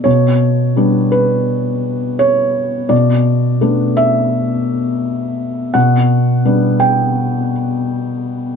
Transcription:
<<
  \new Staff \with { instrumentName = "Felt piano" } { \time 4/4 \key g \lydian \tempo 4 = 84 cis''4. b'4. cis''4 | d''4. e''2~ e''8 | fis''4. g''4 r4. | }
  \new Staff \with { instrumentName = "Felt piano" } { \time 4/4 \key g \lydian b,4 <g b d'>2. | b,4 <a b d'>2. | b,4 <g b d'>2. | }
>>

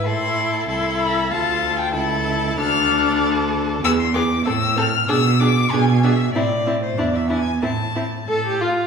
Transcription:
<<
  \new Staff \with { instrumentName = "Violin" } { \time 2/4 \key a \minor \tempo 4 = 95 c'''4 c'''8 b''8 | a''8. g''16 a''4 | f'''4 r4 | e'''16 c'''16 d'''8 e'''8 f'''8 |
e'''8 d'''8 gis''8 e''8 | d''8. c''16 d''16 e''16 gis''8 | a''4 r4 | }
  \new Staff \with { instrumentName = "Violin" } { \time 2/4 \key a \minor a'4 a'4 | a'4 a'4 | a'2 | gis'8 gis'8 a'8 a'8 |
gis'8 gis'8 gis'8 gis'8 | e'8 e'8 e'8 e'8 | e'8 e'8 a'8 f'8 | }
  \new Staff \with { instrumentName = "Viola" } { \time 2/4 \key a \minor e'4 e'4 | f'4 e'4 | d'2 | b8 b8 c'8 c'8 |
d'8 d'8 d'8 d'8 | c'8 c'8 d'8 d'8 | c'8 c'8 a'16 g'16 f'8 | }
  \new Staff \with { instrumentName = "Cello" } { \clef bass \time 2/4 \key a \minor a,4 c,4 | d,4 cis,4 | d,2 | e,4 a,4 |
b,4 b,4 | a,4 e,4 | a,4 a,4 | }
>>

